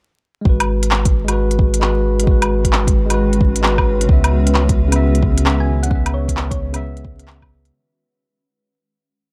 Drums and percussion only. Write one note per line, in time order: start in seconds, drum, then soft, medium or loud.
0.45 kick loud
0.60 closed hi-hat soft
0.60 low woodblock medium
0.83 closed hi-hat medium
0.91 clap loud
1.05 kick loud
1.05 closed hi-hat soft
1.28 closed hi-hat medium
1.28 low woodblock soft
1.51 closed hi-hat soft
1.59 kick loud
1.74 closed hi-hat medium
1.82 clap loud
2.20 closed hi-hat medium
2.27 kick loud
2.42 closed hi-hat soft
2.42 low woodblock medium
2.65 kick medium
2.65 closed hi-hat medium
2.73 clap loud
2.87 kick loud
2.87 closed hi-hat soft
3.10 closed hi-hat medium
3.10 low woodblock soft
3.33 closed hi-hat soft
3.41 kick loud
3.56 closed hi-hat medium
3.64 clap loud
3.78 kick medium
3.78 low woodblock medium
4.01 closed hi-hat medium
4.09 kick loud
4.24 closed hi-hat soft
4.24 low woodblock medium
4.47 closed hi-hat medium
4.55 clap loud
4.69 kick loud
4.69 closed hi-hat soft
4.92 closed hi-hat medium
4.92 low woodblock soft
5.15 closed hi-hat soft
5.23 kick loud
5.38 closed hi-hat medium
5.46 clap loud
5.83 closed hi-hat medium
5.91 kick loud
6.06 closed hi-hat soft
6.06 low woodblock medium
6.28 kick medium
6.28 closed hi-hat medium
6.37 clap loud
6.51 kick loud
6.51 closed hi-hat soft
6.74 closed hi-hat medium
6.74 low woodblock soft
6.97 closed hi-hat soft
7.05 kick loud
7.19 closed hi-hat medium
7.28 clap loud
7.42 kick medium
7.42 low woodblock soft
7.65 closed hi-hat medium